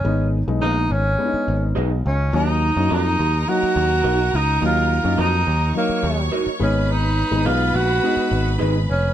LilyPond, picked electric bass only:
\new Staff \with { instrumentName = "Picked electric bass" } { \clef bass \time 4/4 \key ees \minor \tempo 4 = 105 aes,,8. ces,16 bes,,8 aes,,8 r8 aes,,8 ces,8 des,8 | ees,8. ges,16 f,8 ees,8 r8 ees,8 ces,8 des,8 | ees,8. ges,16 f,8 ees,8 r8 ees,8 r8 aes,,8~ | aes,,8. aes,,16 ces,8 bes,,8 r8 aes,,8 aes,,8 f,,8 | }